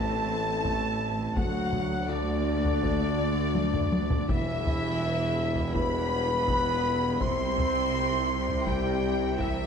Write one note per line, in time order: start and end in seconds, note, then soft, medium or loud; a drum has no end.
0.00 1.33 A1 medium
0.00 1.38 A1 medium
0.00 1.33 A2 medium
0.00 1.20 A3 medium
0.00 1.33 C4 medium
0.00 1.33 E4 medium
0.00 1.21 A4 loud
0.00 1.19 A5 loud
0.00 1.34 A5 medium
0.00 1.37 A5 medium
0.00 1.37 A5 loud
0.65 taiko medium
1.36 4.12 D2 medium
1.36 4.29 D2 medium
1.36 2.08 F#3 medium
1.36 4.25 A3 medium
1.36 4.25 F#4 medium
1.36 2.09 F#4 loud
1.36 2.08 F#5 loud
1.36 2.09 F#5 medium
1.36 2.08 F#5 medium
1.36 2.09 F#5 medium
1.36 taiko loud
1.73 taiko low medium
2.09 4.28 D3 loud
2.09 4.29 D4 loud
2.09 4.07 D5 medium
2.09 4.28 D5 medium
2.09 4.29 D5 loud
2.09 4.29 D5 medium
2.64 taiko low soft
2.83 taiko medium
3.55 taiko high medium
3.74 taiko low-mid medium
3.92 taiko high medium
4.10 taiko low loud
4.28 7.16 E1 medium
4.28 7.22 E1 medium
4.28 7.17 E2 medium
4.28 5.75 E3 loud
4.28 9.67 G3 medium
4.28 5.72 E4 loud
4.28 9.67 E4 medium
4.28 5.71 E5 loud
4.28 5.75 E5 loud
4.28 5.72 E5 loud
4.28 taiko loud
4.66 taiko low medium
5.56 taiko low medium
5.74 7.18 B3 loud
5.74 7.20 B4 loud
5.74 7.17 B5 loud
5.74 7.18 B5 loud
5.74 7.22 B5 loud
5.74 taiko medium
6.48 taiko medium
7.19 9.67 C2 medium
7.19 9.67 C3 medium
7.19 8.64 C4 loud
7.19 8.63 C5 loud
7.19 8.66 C6 loud
7.19 8.63 C6 loud
7.19 8.64 C6 loud
7.19 taiko medium
7.58 taiko low medium
8.49 taiko low soft
8.65 9.23 G3 loud
8.65 9.38 G4 loud
8.65 9.39 G5 loud
8.65 9.39 G5 medium
8.65 9.40 G5 medium
8.65 9.39 G5 loud
8.65 taiko medium
9.38 9.67 E3 medium
9.38 9.67 E4 loud
9.38 9.67 E5 medium
9.38 9.67 E5 loud
9.38 9.67 E5 medium
9.38 taiko medium